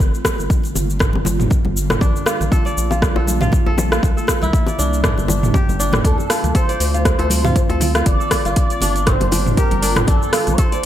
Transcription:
0.00 analog synth bass G1, ambient pad D3 G3 A#3 F4, kick, shaker
0.14 shaker
0.25 kick, cross-stick, low bongo, muted conga, shaker
0.38 analog synth bass G1, high conga, shaker
0.50 kick, shaker
0.64 muted conga, shaker
0.75 analog synth bass G1, low bongo, low conga, shaker
0.90 shaker
0.99 kick, cross-stick, mid tom, muted conga, shaker
1.13 analog synth bass G1, low bongo, high conga
1.25 high bongo, high conga, low conga, shaker
1.40 mid tom, high conga, shaker
1.50 kick, muted conga, shaker
1.65 analog synth bass G1, low bongo, high conga
1.77 shaker
1.90 cross-stick, mid tom, high bongo, muted conga, high conga, shaker
2.01 analog synth bass A#1, ambient pad A3 A#3 F4, kora D4, kick, low bongo, shaker
2.16 shaker
2.26 kora F4, cross-stick, muted conga, shaker
2.41 analog synth bass A#1, high conga, low conga, shaker
2.52 kora A4, kick, low bongo, shaker
2.65 kora D5, muted conga, shaker
2.77 analog synth bass A#1, shaker
2.91 kora F4, low bongo, shaker
3.02 kick, cross-stick, muted conga, high conga, shaker
3.16 analog synth bass A#1, kora A4, high bongo
3.27 high conga, shaker
3.41 kora F4, mid tom, low bongo, low conga, shaker
3.52 kick, muted conga, high conga, shaker
3.66 analog synth bass A#1, kora A4, high bongo
3.78 high bongo, low bongo, high conga, low conga, shaker
3.92 kora F4, cross-stick, muted conga, shaker
4.03 analog synth bass C2, ambient pad C3 G3 E4, kick, shaker
4.17 kora A4, shaker
4.27 kick, cross-stick, low bongo, muted conga, shaker
4.42 analog synth bass C2, kora E4, high conga, low conga, shaker
4.53 kick, shaker
4.67 kora D5, low bongo, muted conga, shaker
4.78 analog synth bass C2, kora D4, low conga, shaker
4.93 shaker
5.04 kora D4, kick, cross-stick, mid tom, muted conga, shaker
5.18 analog synth bass G1, low bongo, high conga, shaker
5.28 kora D4, high bongo, high conga, low conga, shaker
5.43 mid tom, high conga, shaker
5.54 kora G4, kick, low bongo, muted conga, shaker
5.68 analog synth bass G1, high conga, shaker
5.80 kora D4, shaker
5.93 cross-stick, mid tom, high bongo, muted conga, high conga, shaker
6.04 analog synth bass D2, ambient pad D3 A3 C4 F4, kora D4, analog synth lead A4, kick, closed hi-hat, shaker
6.18 low bongo, shaker
6.30 kora F4, cross-stick, open hi-hat, muted conga, shaker
6.44 analog synth bass D2, closed hi-hat, high conga, low conga, shaker
6.55 kora A4, analog synth lead C5, kick, closed hi-hat, low bongo, shaker
6.69 kora D5, closed hi-hat, muted conga, shaker
6.80 analog synth bass D2, open hi-hat, shaker
6.94 kora F4, closed hi-hat, shaker
7.05 analog synth lead C5, kick, cross-stick, closed hi-hat, low bongo, muted conga, high conga, shaker
7.19 analog synth bass D2, kora A4, closed hi-hat, high bongo
7.30 open hi-hat, high conga, shaker
7.44 kora F4, mid tom, low bongo, low conga, shaker
7.56 kick, closed hi-hat, muted conga, high conga, shaker
7.69 analog synth bass D2, kora A4, closed hi-hat, high bongo
7.80 open hi-hat, high bongo, high conga, low conga, shaker
7.95 kora F4, cross-stick, closed hi-hat, low bongo, muted conga, shaker
8.06 analog synth bass G1, ambient pad G3 A#3 F4, analog synth lead D5, kick, closed hi-hat, shaker
8.20 kora A4, shaker
8.31 kick, cross-stick, open hi-hat, low bongo, muted conga, shaker
8.45 analog synth bass G1, kora F4, closed hi-hat, high conga, shaker
8.56 analog synth lead D5, kick, closed hi-hat, shaker
8.70 kora D5, closed hi-hat, muted conga, shaker
8.81 analog synth bass G1, kora D4, open hi-hat, low bongo, low conga, shaker
8.96 closed hi-hat, shaker
9.06 kora C4, analog synth lead C5, kick, cross-stick, closed hi-hat, mid tom, muted conga, shaker
9.21 analog synth bass G1, closed hi-hat, low bongo, high conga
9.31 kora D4, open hi-hat, high bongo, high conga, low conga, shaker
9.46 mid tom, high conga, shaker
9.57 kora G4, analog synth lead A#4, kick, closed hi-hat, muted conga, shaker
9.71 analog synth bass G1, closed hi-hat, low bongo, high conga
9.82 kora D4, open hi-hat, shaker
9.96 cross-stick, closed hi-hat, mid tom, high bongo, muted conga, high conga, shaker
10.07 analog synth bass A#1, ambient pad D3 A3 A#3, kora D4, analog synth lead A4, kick, closed hi-hat, low bongo, shaker
10.22 shaker
10.33 kora F4, cross-stick, open hi-hat, muted conga, shaker
10.47 analog synth bass A#1, closed hi-hat, high conga, low conga, shaker
10.52 analog synth lead D5
10.58 kora A4, analog synth lead C5, kick, closed hi-hat, low bongo, shaker
10.72 kora D5, closed hi-hat, muted conga, shaker

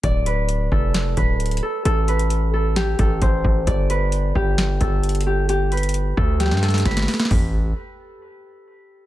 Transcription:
0.03 808-style bass D1, harp D5, kick, closed hi-hat
0.26 harp B4, closed hi-hat
0.49 closed hi-hat
0.72 808-style bass F1, harp A4, kick
0.94 snare, closed hi-hat
1.17 808-style bass D1, harp B4, kick, closed hi-hat
1.40 closed hi-hat
1.46 closed hi-hat
1.51 closed hi-hat
1.57 closed hi-hat
1.63 harp A4
1.85 808-style bass A1, harp A4, closed hi-hat
2.08 harp B4, closed hi-hat
2.19 closed hi-hat
2.30 closed hi-hat
2.54 harp A4
2.76 harp G4, snare, closed hi-hat
2.99 808-style bass A1, harp A4, kick, closed hi-hat
3.22 808-style bass A1, harp C5, kick, closed hi-hat
3.44 808-style bass A1, kick
3.67 808-style bass G1, harp D5, kick, closed hi-hat
3.90 harp B4, closed hi-hat
4.12 closed hi-hat
4.35 808-style bass G1, harp G4, kick
4.58 snare, closed hi-hat
4.81 808-style bass G1, harp A4, kick, closed hi-hat
5.03 closed hi-hat
5.09 closed hi-hat
5.15 closed hi-hat
5.21 closed hi-hat
5.26 harp G4
5.49 harp G4, closed hi-hat
5.72 harp B4, closed hi-hat
5.77 closed hi-hat
5.83 closed hi-hat
5.89 closed hi-hat
5.94 closed hi-hat
6.17 808-style bass D2, harp A4, kick
6.40 harp G4, snare, closed hi-hat
6.46 snare
6.51 808-style bass G2, snare
6.57 snare
6.63 harp A4, snare, closed hi-hat
6.68 snare, closed hi-hat
6.74 snare, closed hi-hat
6.80 snare
6.85 808-style bass G1, harp B4, kick, snare, closed hi-hat
6.91 snare
6.97 snare, closed hi-hat
7.02 snare
7.08 snare, open hi-hat
7.14 snare
7.20 snare
7.25 snare
7.31 808-style bass A1, kick, floor tom, open hi-hat

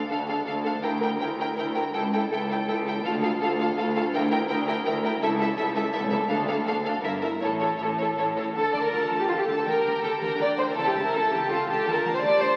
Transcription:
0.10 cello section D2, double bass section D2, viola section D4, violin section A4 F5
0.28 viola section D4, violin section A4 F5
0.45 cello section D2, double bass section D2, viola section D4, violin section A4 F5
0.64 viola section D4, violin section A4 F5
0.83 cello section D2, double bass section D2, viola section E4, violin section A#4 G5
1.01 viola section E4, violin section A#4 G5
1.20 cello section D2, double bass section D2, viola section E4, violin section A#4 G5
1.39 viola section E4, violin section A#4 G5
1.57 cello section D2, double bass section D2, viola section E4, violin section A#4 G5
1.74 viola section E4, violin section A#4 G5
1.93 cello section C#2, double bass section C#2, viola section E4, violin section A4 G5
2.12 viola section E4, violin section A4 G5
2.31 cello section C#2, double bass section C#2, viola section E4, violin section A4 G5
2.50 viola section E4, violin section A4 G5
2.68 cello section C#2, double bass section C#2, viola section E4, violin section A4 G5
2.85 viola section E4, violin section A4 G5
3.03 cello section D2, double bass section D2, viola section F4, violin section A4 F5
3.21 viola section F4, violin section A4 F5
3.40 cello section D2, double bass section D2, viola section F4, violin section A4 F5
3.58 viola section F4, violin section A4 F5
3.77 cello section D2, double bass section D2, viola section F4, violin section A4 F5
3.95 viola section F4, violin section A4 F5
4.13 double bass section D2, cello section D2, viola section E4, violin section A#4 G5
4.30 viola section E4, violin section A#4 G5
4.48 double bass section D2, cello section D2, viola section E4, violin section A#4 G5
4.67 viola section E4, violin section A#4 G5
4.85 cello section D2, double bass section D2, viola section E4, violin section A#4 G5
5.03 viola section E4, violin section A#4 G5
5.22 double bass section C#2, cello section C#2, viola section E4, violin section A4 E5
5.39 viola section E4, violin section A4 E5
5.57 cello section C#2, double bass section C#2, viola section E4, violin section A4 E5
5.75 viola section E4, violin section A4 E5
5.93 cello section C#2, double bass section C#2, viola section E4, violin section A4 E5
6.10 viola section E4, violin section A4 E5
6.29 double bass section D2, cello section D2, viola section D4, violin section A4 F5
6.47 viola section D4, violin section A4 F5
6.67 double bass section D2, cello section D2, viola section D4, violin section A4 F5
6.85 viola section D4, violin section A4 F5
7.03 double bass section G1, cello section G2, viola section E4, violin section A#4 E5
7.22 viola section E4, violin section A#4 E5
7.41 double bass section A1, cello section A2, viola section E4, violin section A4 C#5
7.60 viola section E4, violin section A4 C#5
7.78 double bass section A1, cello section A2, viola section E4, violin section C#5
7.83 violin section A4
7.98 viola section E4, violin section A4 C#5
8.17 double bass section A1, cello section A2, viola section E4, violin section A4 C#5
8.36 viola section E4, violin section A4 C#5
8.55 double bass section D2, cello section D3, violin section A4 A5
8.73 double bass section D2, cello section D3, violin section D5 A5
8.82 violin section A#4
8.92 double bass section D2, cello section D3, viola section F4, violin section A5
9.01 violin section A4
9.10 double bass section D2, cello section D3, violin section A5
9.19 violin section G4
9.28 double bass section D2, cello section D3, violin section F4 A5, viola section A4
9.38 violin section G4
9.47 double bass section D2, cello section D3, violin section A5
9.57 violin section A4
9.65 double bass section D2, cello section D3, viola section G4, violin section A#4 G5
9.84 double bass section D2, cello section D3, violin section G5
10.02 double bass section D2, cello section D3, violin section A4 G5
10.20 double bass section D2, cello section D3, violin section A#4 G5
10.38 double bass section D2, cello section D3, viola section D4, violin section D5 G5
10.57 double bass section D2, cello section D3, violin section C5 G5
10.67 violin section A#4
10.75 double bass section C#2, cello section C#3, viola section E4, violin section A4 A5
10.86 violin section G4
10.94 double bass section C#2, cello section C#3, violin section A5
11.04 violin section A#4
11.12 double bass section C#2, cello section C#3, violin section A4 A5
11.30 double bass section C#2, cello section C#3, violin section G4 A5
11.49 double bass section C#2, cello section C#3, violin section F4 A5, viola section A4
11.68 double bass section C#2, cello section C#3, violin section G4 A5
11.86 double bass section D2, cello section D3, viola section F4, violin section A4 A5
11.94 violin section A#4
12.04 double bass section D2, cello section D3, violin section A5
12.14 violin section C5
12.22 double bass section D2, cello section D3, viola section G4, violin section D5 A5
12.39 double bass section D2, cello section D3, violin section C5 A5

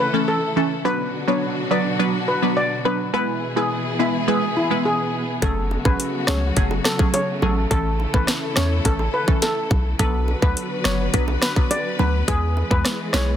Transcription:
Already playing: string section C#3 E3 A3 E4 A4
0.00 steel pan B4
0.13 synth pluck E3 A3 C#4 A4
0.28 steel pan A4
0.56 synth pluck E3 A3 C#4 A4
0.85 string section B2 D3 F#3 D4 F#4, synth pluck F#3 B3 D4 B4, steel pan B4
1.28 synth pluck F#3 B3 D4 B4, steel pan C#5
1.71 synth pluck F#3 B3 D4 B4, steel pan D5
1.99 synth pluck F#3 B3 D4 B4
2.28 steel pan B4
2.42 synth pluck F#3 B3 D4 B4
2.57 steel pan D5
2.85 synth pluck F#3 B3 D4 B4, steel pan B4
3.13 string section B2 E3 B3 E4 G#4, synth pluck G#3 B3 E4 B4, steel pan B4
3.56 synth pluck G#3 B3 E4 B4, steel pan G#4
3.99 synth pluck G#3 B3 E4 B4, steel pan E4
4.28 synth pluck G#3 B3 E4 B4, steel pan G#4
4.57 steel pan E4
4.70 synth pluck G#3 B3 E4 B4
4.85 steel pan G#4
5.42 808-style bass F#1, string section C#3 F#3 A3 F#4, synth pluck F#3 A3 C#4 G#4, steel pan A4, kick, closed hi-hat
5.71 high bongo
5.85 808-style bass A1, synth pluck F#3 A3 C#4 G#4, steel pan B4, kick
6.00 closed hi-hat
6.27 808-style bass C#2, synth pluck F#3 A3 C#4 G#4, steel pan C#5, cross-stick, snare
6.57 808-style bass F#1, synth pluck F#3 A3 C#4 G#4, kick, closed hi-hat
6.71 high bongo
6.84 steel pan A4, cross-stick, snare
6.99 synth pluck F#3 A3 C#4 G#4, kick
7.14 steel pan C#5, closed hi-hat, high bongo
7.42 808-style bass A1, synth pluck F#3 A3 C#4 G#4, steel pan A4, high bongo, low bongo
7.71 808-style bass A1, synth pluck E3 A3 C#4 A4, string section E3 E4 A4, steel pan A4, kick, closed hi-hat
8.00 high bongo
8.14 808-style bass A1, synth pluck E3 A3 C#4 A4, steel pan B4, kick
8.27 cross-stick, snare, closed hi-hat
8.56 808-style bass E2, synth pluck E3 A3 C#4 A4, steel pan C#5, cross-stick, snare
8.85 808-style bass A1, synth pluck E3 A3 C#4 A4, steel pan A4, kick, closed hi-hat
8.99 high bongo
9.14 steel pan B4
9.28 synth pluck E3 A3 C#4 A4, kick
9.42 steel pan A4, snare, closed hi-hat, high bongo
9.71 808-style bass B1, kick, high bongo, low bongo
9.99 808-style bass B1, string section D3 F#3 B3 F#4 B4, synth pluck F#3 B3 D4 B4, steel pan A4, kick, closed hi-hat
10.28 high bongo
10.42 808-style bass D2, synth pluck F#3 B3 D4 B4, steel pan B4, kick
10.57 closed hi-hat
10.84 808-style bass F#1, synth pluck F#3 B3 D4 B4, steel pan C#5, cross-stick, snare
11.14 808-style bass B1, synth pluck F#3 B3 D4 B4, kick, closed hi-hat
11.28 high bongo
11.42 steel pan B4, cross-stick, snare
11.56 synth pluck F#3 B3 D4 B4, kick
11.71 steel pan D5, closed hi-hat, high bongo
11.99 808-style bass D2, synth pluck F#3 B3 D4 B4, steel pan B4, high bongo, low bongo
12.28 808-style bass E2, string section E3 G#3 G#4, synth pluck G#3 B3 E4 B4, steel pan G#4, kick, closed hi-hat
12.57 high bongo
12.71 808-style bass E2, synth pluck G#3 B3 E4 B4, steel pan B4, kick
12.85 cross-stick, snare, closed hi-hat
13.13 808-style bass B1, synth pluck G#3 B3 E4 B4, steel pan C#5, cross-stick, snare, low bongo

